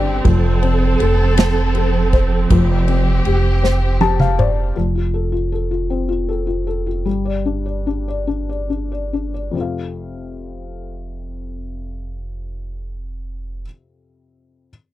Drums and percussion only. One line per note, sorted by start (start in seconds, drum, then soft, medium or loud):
0.25 kick loud
0.25 ride medium
0.63 ride soft
1.00 ride medium
1.37 snare loud
1.37 ride medium
1.75 ride medium
2.13 kick medium
2.13 ride soft
2.50 kick loud
2.50 ride medium
2.88 ride medium
3.25 ride soft
3.64 snare medium
4.01 high tom medium
4.20 mid tom medium
4.39 mid tom loud